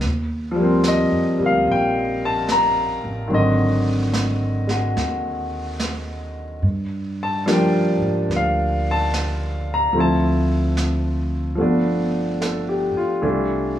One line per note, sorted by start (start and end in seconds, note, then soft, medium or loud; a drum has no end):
0.01 1.08 D#2 medium
0.01 brush sweep soft
0.01 snare soft
0.51 3.29 F3 medium
0.56 1.37 G3 soft
0.60 1.41 A#3 soft
0.60 3.29 C4 medium
0.84 snare soft
0.84 hi-hat pedal medium
0.88 1.37 D#5 medium
1.11 1.37 F2 soft
1.38 1.65 D2 medium
1.38 3.31 G3 soft
1.42 3.33 A#3 soft
1.42 1.69 F5 medium
1.66 3.00 A#1 medium
1.66 brush sweep soft
1.72 2.25 G5 medium
2.25 2.49 A5 medium
2.48 3.29 A#5 medium
2.48 snare soft
2.48 hi-hat pedal soft
3.04 3.30 A1 medium
3.28 4.92 G#1 medium
3.28 6.62 D#3 soft
3.28 6.63 F#3 soft
3.28 6.63 C4 soft
3.28 brush sweep soft
3.33 6.64 D3 soft
3.33 6.33 D#5 medium
4.13 snare soft
4.13 hi-hat pedal soft
4.67 6.63 G#3 soft
4.67 6.64 F#4 soft
4.67 snare soft
4.96 6.59 D#2 medium
4.96 brush sweep soft
4.96 snare soft
5.80 snare soft
5.80 hi-hat pedal medium
6.62 7.97 G2 medium
6.62 brush sweep soft
7.23 7.50 A5 medium
7.46 9.91 F3 medium
7.46 9.95 G3 soft
7.46 9.95 A#3 soft
7.46 9.96 D4 medium
7.46 snare soft
7.46 hi-hat pedal soft
7.53 8.35 G5 medium
8.01 8.27 G#2 medium
8.29 9.91 D2 medium
8.29 brush sweep soft
8.29 snare soft
8.36 8.89 F5 medium
8.91 9.73 A5 medium
9.14 snare soft
9.14 hi-hat pedal soft
9.74 9.97 A#5 medium
9.93 11.54 D2 medium
9.93 11.54 F3 soft
9.93 11.57 A3 soft
9.93 11.60 C4 soft
9.93 brush sweep soft
9.98 11.61 E4 soft
9.98 12.94 A5 medium
10.77 snare soft
10.77 hi-hat pedal soft
11.55 12.91 G1 medium
11.55 13.22 F3 soft
11.55 13.21 A3 soft
11.55 brush sweep soft
11.60 13.24 B3 soft
11.60 13.22 D4 soft
12.41 12.92 A4 soft
12.41 snare soft
12.41 hi-hat pedal soft
12.69 13.11 G4 soft
12.95 13.39 F4 soft
12.95 muted upright bass stroke soft
13.22 13.79 C2 medium
13.22 13.79 E3 soft
13.22 13.79 G3 soft
13.22 13.79 A3 soft
13.22 13.79 D4 soft
13.22 brush sweep soft